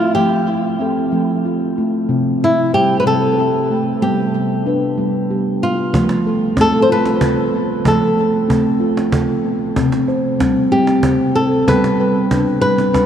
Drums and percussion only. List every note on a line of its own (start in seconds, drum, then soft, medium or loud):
5.94 cajon bass medium
6.09 cajon slap soft
6.26 cajon slap soft
6.57 cajon bass medium
6.57 cajon slap soft
7.06 cajon slap soft
7.21 cajon bass medium
7.85 cajon bass medium
8.18 cajon slap soft
8.50 cajon bass medium
8.97 cajon slap soft
9.12 cajon bass medium
9.76 cajon bass medium
9.92 cajon slap soft
10.08 cajon slap soft
10.40 cajon bass medium
10.40 cajon slap soft
10.87 cajon slap soft
11.03 cajon bass medium
11.68 cajon bass medium
11.84 cajon slap soft
12.16 cajon slap soft
12.31 cajon bass medium
12.48 cajon slap soft
12.78 cajon slap soft
12.94 cajon bass medium
12.94 cajon slap soft